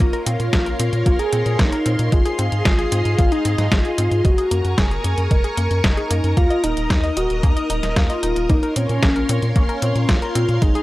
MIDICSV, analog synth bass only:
0, 0, Header, 1, 2, 480
1, 0, Start_track
1, 0, Time_signature, 4, 2, 24, 8
1, 0, Key_signature, -5, "minor"
1, 0, Tempo, 530973
1, 9788, End_track
2, 0, Start_track
2, 0, Title_t, "Analog synth bass"
2, 0, Program_c, 0, 38
2, 0, Note_on_c, 0, 34, 101
2, 93, Note_off_c, 0, 34, 0
2, 238, Note_on_c, 0, 46, 82
2, 332, Note_off_c, 0, 46, 0
2, 358, Note_on_c, 0, 46, 72
2, 452, Note_off_c, 0, 46, 0
2, 479, Note_on_c, 0, 34, 92
2, 666, Note_off_c, 0, 34, 0
2, 718, Note_on_c, 0, 46, 97
2, 812, Note_off_c, 0, 46, 0
2, 839, Note_on_c, 0, 46, 96
2, 933, Note_off_c, 0, 46, 0
2, 959, Note_on_c, 0, 34, 94
2, 1053, Note_off_c, 0, 34, 0
2, 1200, Note_on_c, 0, 46, 85
2, 1293, Note_off_c, 0, 46, 0
2, 1319, Note_on_c, 0, 46, 94
2, 1413, Note_off_c, 0, 46, 0
2, 1439, Note_on_c, 0, 34, 93
2, 1533, Note_off_c, 0, 34, 0
2, 1680, Note_on_c, 0, 46, 94
2, 1773, Note_off_c, 0, 46, 0
2, 1800, Note_on_c, 0, 46, 102
2, 1893, Note_off_c, 0, 46, 0
2, 1919, Note_on_c, 0, 32, 97
2, 2013, Note_off_c, 0, 32, 0
2, 2160, Note_on_c, 0, 44, 84
2, 2253, Note_off_c, 0, 44, 0
2, 2280, Note_on_c, 0, 44, 80
2, 2373, Note_off_c, 0, 44, 0
2, 2399, Note_on_c, 0, 32, 93
2, 2587, Note_off_c, 0, 32, 0
2, 2639, Note_on_c, 0, 44, 97
2, 2733, Note_off_c, 0, 44, 0
2, 2760, Note_on_c, 0, 44, 92
2, 2853, Note_off_c, 0, 44, 0
2, 2879, Note_on_c, 0, 32, 98
2, 2973, Note_off_c, 0, 32, 0
2, 3120, Note_on_c, 0, 44, 83
2, 3213, Note_off_c, 0, 44, 0
2, 3239, Note_on_c, 0, 44, 97
2, 3333, Note_off_c, 0, 44, 0
2, 3359, Note_on_c, 0, 32, 90
2, 3453, Note_off_c, 0, 32, 0
2, 3600, Note_on_c, 0, 44, 95
2, 3693, Note_off_c, 0, 44, 0
2, 3719, Note_on_c, 0, 44, 98
2, 3813, Note_off_c, 0, 44, 0
2, 3839, Note_on_c, 0, 30, 92
2, 3933, Note_off_c, 0, 30, 0
2, 4079, Note_on_c, 0, 42, 81
2, 4173, Note_off_c, 0, 42, 0
2, 4199, Note_on_c, 0, 42, 74
2, 4293, Note_off_c, 0, 42, 0
2, 4319, Note_on_c, 0, 30, 92
2, 4507, Note_off_c, 0, 30, 0
2, 4559, Note_on_c, 0, 42, 94
2, 4653, Note_off_c, 0, 42, 0
2, 4679, Note_on_c, 0, 42, 88
2, 4773, Note_off_c, 0, 42, 0
2, 4799, Note_on_c, 0, 30, 99
2, 4893, Note_off_c, 0, 30, 0
2, 5038, Note_on_c, 0, 42, 85
2, 5132, Note_off_c, 0, 42, 0
2, 5159, Note_on_c, 0, 42, 97
2, 5253, Note_off_c, 0, 42, 0
2, 5280, Note_on_c, 0, 30, 90
2, 5373, Note_off_c, 0, 30, 0
2, 5519, Note_on_c, 0, 42, 93
2, 5613, Note_off_c, 0, 42, 0
2, 5640, Note_on_c, 0, 42, 103
2, 5733, Note_off_c, 0, 42, 0
2, 5759, Note_on_c, 0, 39, 98
2, 5853, Note_off_c, 0, 39, 0
2, 5999, Note_on_c, 0, 27, 79
2, 6093, Note_off_c, 0, 27, 0
2, 6120, Note_on_c, 0, 27, 79
2, 6213, Note_off_c, 0, 27, 0
2, 6239, Note_on_c, 0, 39, 90
2, 6427, Note_off_c, 0, 39, 0
2, 6479, Note_on_c, 0, 27, 93
2, 6573, Note_off_c, 0, 27, 0
2, 6599, Note_on_c, 0, 27, 93
2, 6693, Note_off_c, 0, 27, 0
2, 6719, Note_on_c, 0, 39, 94
2, 6813, Note_off_c, 0, 39, 0
2, 6959, Note_on_c, 0, 27, 98
2, 7053, Note_off_c, 0, 27, 0
2, 7079, Note_on_c, 0, 27, 83
2, 7173, Note_off_c, 0, 27, 0
2, 7199, Note_on_c, 0, 39, 91
2, 7293, Note_off_c, 0, 39, 0
2, 7440, Note_on_c, 0, 27, 100
2, 7533, Note_off_c, 0, 27, 0
2, 7560, Note_on_c, 0, 27, 92
2, 7653, Note_off_c, 0, 27, 0
2, 7680, Note_on_c, 0, 34, 98
2, 7773, Note_off_c, 0, 34, 0
2, 7920, Note_on_c, 0, 46, 78
2, 8013, Note_off_c, 0, 46, 0
2, 8040, Note_on_c, 0, 46, 76
2, 8133, Note_off_c, 0, 46, 0
2, 8160, Note_on_c, 0, 34, 94
2, 8347, Note_off_c, 0, 34, 0
2, 8400, Note_on_c, 0, 46, 96
2, 8493, Note_off_c, 0, 46, 0
2, 8520, Note_on_c, 0, 46, 90
2, 8613, Note_off_c, 0, 46, 0
2, 8640, Note_on_c, 0, 34, 93
2, 8733, Note_off_c, 0, 34, 0
2, 8880, Note_on_c, 0, 46, 83
2, 8973, Note_off_c, 0, 46, 0
2, 8999, Note_on_c, 0, 46, 98
2, 9093, Note_off_c, 0, 46, 0
2, 9119, Note_on_c, 0, 34, 97
2, 9213, Note_off_c, 0, 34, 0
2, 9360, Note_on_c, 0, 46, 94
2, 9453, Note_off_c, 0, 46, 0
2, 9480, Note_on_c, 0, 46, 101
2, 9573, Note_off_c, 0, 46, 0
2, 9600, Note_on_c, 0, 32, 97
2, 9693, Note_off_c, 0, 32, 0
2, 9788, End_track
0, 0, End_of_file